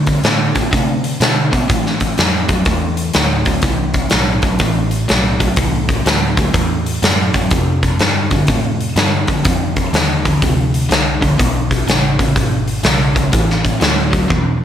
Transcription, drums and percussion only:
0.07 kick, open hi-hat
0.24 snare, open hi-hat
0.55 kick, open hi-hat
0.73 kick, open hi-hat
1.04 open hi-hat
1.21 snare, open hi-hat
1.53 kick, open hi-hat
1.70 kick, open hi-hat
1.86 snare
2.00 kick, open hi-hat
2.18 snare, open hi-hat
2.49 kick, open hi-hat
2.65 kick, open hi-hat
2.97 open hi-hat
3.14 snare, open hi-hat
3.45 kick, open hi-hat
3.62 kick, open hi-hat
3.94 kick, open hi-hat
4.10 snare, open hi-hat
4.42 kick, open hi-hat
4.59 kick, open hi-hat
4.91 open hi-hat
5.09 snare, open hi-hat
5.40 kick, open hi-hat
5.56 kick, open hi-hat
5.89 kick, open hi-hat
6.06 snare, open hi-hat
6.37 kick, open hi-hat
6.54 kick, open hi-hat
6.86 open hi-hat
7.03 snare, open hi-hat
7.34 kick, open hi-hat
7.51 kick, open hi-hat
7.83 kick, open hi-hat
7.99 snare, open hi-hat
8.31 kick, open hi-hat
8.47 kick, open hi-hat
8.81 open hi-hat
8.96 snare, open hi-hat
9.27 kick, open hi-hat
9.45 kick, open hi-hat
9.76 kick, open hi-hat
9.94 snare, open hi-hat
10.25 kick, open hi-hat
10.42 kick, open hi-hat
10.74 open hi-hat
10.91 snare, open hi-hat
11.22 kick, open hi-hat
11.39 kick, open hi-hat
11.71 kick, open hi-hat
11.88 snare, open hi-hat
12.19 kick, open hi-hat
12.36 kick, open hi-hat
12.68 open hi-hat
12.84 snare, open hi-hat
13.16 kick, open hi-hat
13.33 kick, open hi-hat
13.50 snare
13.65 kick, open hi-hat
13.81 snare, open hi-hat
14.13 kick, open hi-hat
14.30 kick, high tom

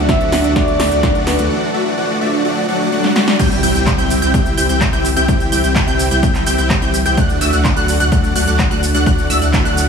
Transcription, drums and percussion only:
0.09 kick, snare, closed hi-hat
0.21 closed hi-hat
0.32 snare, open hi-hat
0.44 closed hi-hat
0.56 kick, snare, closed hi-hat
0.68 closed hi-hat
0.80 snare, open hi-hat
0.92 closed hi-hat
1.03 kick, snare, closed hi-hat
1.15 closed hi-hat
1.27 snare, open hi-hat
1.39 closed hi-hat
3.04 snare
3.16 snare
3.28 snare
3.39 kick, closed hi-hat, crash, cabasa
3.51 closed hi-hat, cabasa
3.63 open hi-hat, cabasa
3.75 closed hi-hat, cabasa
3.87 kick, clap, closed hi-hat, cabasa
3.99 closed hi-hat, cabasa
4.10 open hi-hat, cabasa
4.22 closed hi-hat, cabasa
4.34 kick, closed hi-hat, cabasa
4.46 closed hi-hat, cabasa
4.58 open hi-hat, cabasa
4.69 closed hi-hat, cabasa
4.81 kick, clap, closed hi-hat, cabasa
4.93 closed hi-hat, cabasa
5.05 open hi-hat, cabasa
5.17 closed hi-hat, cabasa
5.28 kick, closed hi-hat, cabasa
5.40 closed hi-hat, cabasa
5.52 open hi-hat, cabasa
5.64 closed hi-hat, cabasa
5.76 kick, clap, closed hi-hat, cabasa
5.88 closed hi-hat, cabasa
5.99 open hi-hat, cabasa
6.11 closed hi-hat, cabasa
6.23 kick, closed hi-hat, cabasa
6.35 clap, closed hi-hat, cabasa
6.46 open hi-hat, cabasa
6.58 closed hi-hat, cabasa
6.70 kick, clap, closed hi-hat, cabasa
6.82 closed hi-hat, cabasa
6.94 open hi-hat, cabasa
7.06 closed hi-hat, cabasa
7.17 kick, closed hi-hat, cabasa
7.29 closed hi-hat, cabasa
7.41 open hi-hat, cabasa
7.53 closed hi-hat, cabasa
7.65 kick, clap, closed hi-hat, cabasa
7.77 closed hi-hat, cabasa
7.88 open hi-hat, cabasa
8.00 closed hi-hat, cabasa
8.12 kick, closed hi-hat, cabasa
8.24 closed hi-hat, cabasa
8.36 open hi-hat, cabasa
8.47 closed hi-hat, cabasa
8.59 kick, clap, closed hi-hat, cabasa
8.71 closed hi-hat, cabasa
8.83 open hi-hat, cabasa
8.95 closed hi-hat, cabasa
9.06 kick, closed hi-hat, cabasa
9.18 closed hi-hat, cabasa
9.30 open hi-hat, cabasa
9.42 closed hi-hat, cabasa
9.54 kick, clap, closed hi-hat, cabasa
9.65 closed hi-hat, cabasa
9.77 open hi-hat, cabasa

